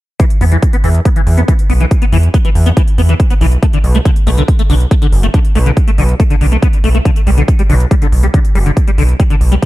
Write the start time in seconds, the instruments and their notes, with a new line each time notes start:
0.20 acid bass E3, kick, closed hi-hat
0.30 closed hi-hat
0.41 analog synth bass E2, acid bass B3, open hi-hat
0.52 acid bass E3, closed hi-hat
0.62 kick, closed hi-hat
0.73 acid bass B3, closed hi-hat
0.84 analog synth bass E2, acid bass E3, open hi-hat
0.95 closed hi-hat
1.05 acid bass B3, kick, closed hi-hat
1.16 acid bass E3, closed hi-hat
1.27 analog synth bass E2, open hi-hat
1.38 acid bass B3, closed hi-hat
1.48 acid bass E3, kick, closed hi-hat
1.59 closed hi-hat
1.70 analog synth bass B1, acid bass B3, open hi-hat
1.80 acid bass E3, closed hi-hat
1.91 kick, closed hi-hat
2.02 acid bass B3, closed hi-hat
2.12 analog synth bass E2, acid bass E3, open hi-hat
2.23 closed hi-hat
2.34 acid bass B3, kick, closed hi-hat
2.45 acid bass E3, closed hi-hat
2.55 analog synth bass E2, open hi-hat
2.66 acid bass B3, closed hi-hat
2.77 acid bass E3, kick, closed hi-hat
2.88 closed hi-hat
2.98 analog synth bass E2, acid bass B3, open hi-hat
3.09 acid bass E3, closed hi-hat
3.20 kick, closed hi-hat
3.30 acid bass B3, closed hi-hat
3.41 analog synth bass B1, acid bass E3, open hi-hat
3.52 closed hi-hat
3.63 acid bass A3, kick, closed hi-hat
3.73 acid bass D3, closed hi-hat
3.84 analog synth bass B1, open hi-hat
3.95 acid bass A3, closed hi-hat
4.05 acid bass D3, kick, closed hi-hat
4.16 closed hi-hat
4.27 analog synth bass B1, acid bass A3, open hi-hat
4.38 acid bass D3, closed hi-hat
4.48 kick, closed hi-hat
4.59 acid bass A3, closed hi-hat
4.70 analog synth bass B1, acid bass D3, open hi-hat
4.80 closed hi-hat
4.91 acid bass A3, kick, closed hi-hat
5.02 acid bass D3, closed hi-hat
5.13 analog synth bass F#1, open hi-hat
5.23 acid bass A3, closed hi-hat
5.34 acid bass D3, kick, closed hi-hat
5.45 closed hi-hat
5.55 analog synth bass B1, acid bass A3, open hi-hat
5.66 acid bass D3, closed hi-hat
5.77 kick, closed hi-hat
5.88 acid bass A3, closed hi-hat
5.98 analog synth bass B1, acid bass D3, open hi-hat
6.09 closed hi-hat
6.20 acid bass A3, kick, closed hi-hat
6.30 acid bass D3, closed hi-hat
6.41 analog synth bass B1, acid bass D3, open hi-hat
6.52 acid bass A3, closed hi-hat
6.62 acid bass B3, kick, closed hi-hat
6.73 closed hi-hat
6.84 analog synth bass B1, acid bass A3, open hi-hat
6.95 acid bass A3, closed hi-hat
7.05 acid bass D3, kick, closed hi-hat
7.16 closed hi-hat
7.27 analog synth bass B1, acid bass G3, open hi-hat
7.37 acid bass D3, closed hi-hat
7.48 kick, closed hi-hat
7.59 acid bass G3, closed hi-hat
7.70 analog synth bass B1, acid bass D3, open hi-hat
7.80 closed hi-hat
7.91 acid bass G3, kick, closed hi-hat
8.02 acid bass D3, closed hi-hat
8.12 analog synth bass B1, open hi-hat
8.23 acid bass G3, closed hi-hat
8.34 acid bass D3, kick, closed hi-hat
8.45 closed hi-hat
8.55 analog synth bass F#1, acid bass G3, open hi-hat
8.66 acid bass D3, closed hi-hat
8.77 kick, closed hi-hat
8.87 acid bass G3, closed hi-hat
8.98 analog synth bass B1, acid bass D3, open hi-hat
9.09 closed hi-hat
9.20 acid bass G3, kick, closed hi-hat
9.30 acid bass D3, closed hi-hat
9.41 analog synth bass B1, open hi-hat
9.52 acid bass G3, closed hi-hat
9.62 acid bass D3, kick